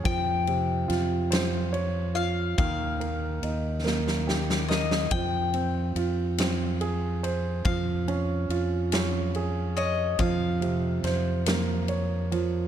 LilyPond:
<<
  \new Staff \with { instrumentName = "Mandolin" } { \time 6/8 \key des \lydian \tempo 4. = 47 g''2~ g''8 f''8 | f''2~ f''8 ees''8 | g''2. | f''2~ f''8 ees''8 |
f''2. | }
  \new Staff \with { instrumentName = "Grand piano" } { \time 6/8 \key des \lydian f8 c8 f'8 c''8 des''8 f'8 | ees8 bes8 ees'8 bes8 g'8 bes'8 | f8 c'8 f'8 c'8 aes'8 c''8 | f8 des'8 f'8 des'8 aes'8 des''8 |
f8 c8 c''8 bes8 des''8 f8 | }
  \new Staff \with { instrumentName = "Fingered electric bass" } { \clef bass \time 6/8 \key des \lydian f,4 f,2 | ees,4 ees,2 | f,4 f,2 | f,4 f,2 |
f,4 f,2 | }
  \new DrumStaff \with { instrumentName = "Drums" } \drummode { \time 6/8 <bd cymr>8 cymr8 <cymr sn>8 <cymr sn>8 cymr8 cymr8 | <bd cymr>8 cymr8 cymr8 sn16 sn16 sn16 sn16 sn16 sn16 | <bd cymr>8 cymr8 cymr8 <cymr sn>8 cymr8 cymr8 | <bd cymr>8 cymr8 cymr8 <cymr sn>8 cymr8 cymr8 |
<bd cymr>8 cymr8 <cymr sn>8 <cymr sn>8 cymr8 cymr8 | }
>>